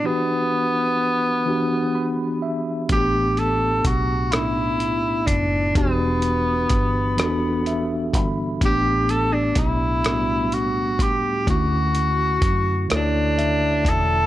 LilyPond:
<<
  \new Staff \with { instrumentName = "Tenor saxophone" } { \time 6/8 \key e \dorian \tempo 4. = 42 b2~ b8 r8 | g'8 a'8 fis'8 e'4 d'8 | b2~ b8 r8 | g'8 a'16 d'16 e'4 fis'8 g'8 |
fis'4. d'4 a'8 | }
  \new Staff \with { instrumentName = "Tine electric piano" } { \time 6/8 \key e \dorian << { r2 b''8 e''8 | r2. | r2 e''8 b''8 | r2. |
r2 e''8 a''8 | } \\ { <e b d' fis' g'>4 r8 <e b d' fis' g'>4 r8 | <a, a b d' fis' g'>4 r8 <a, a b d' dis' e'>4 r8 | <e b d' fis' g'>4 r8 <e b d' fis' a'>4 r8 | <a, a b d' g'>4 r8 <a, g a b d' fis'>4 r8 |
<d a cis' e' fis'>4 r8 <d a e' a' cis''>4 r8 | } >> }
  \new Staff \with { instrumentName = "Fingered electric bass" } { \clef bass \time 6/8 \key e \dorian r2. | a,,4 b,,4. fis,,8 | e,,4 g,,8 e,,4 g,,8 | a,,4 b,,4. cis,8 |
d,4 fis,8 d,4 e,,8 | }
  \new DrumStaff \with { instrumentName = "Drums" } \drummode { \time 6/8 r4. r4. | <hh bd>8 hh8 <hh bd>8 <hh ss>8 hh8 <hh bd>8 | <hh bd>8 hh8 <hh bd>8 <hh ss>8 hh8 <hh bd>8 | <hh bd>8 hh8 <hh bd>8 <hh ss>8 hh8 <hh bd>8 |
<hh bd>8 hh8 <hh bd>8 <hh ss>8 hh8 <hh bd>8 | }
>>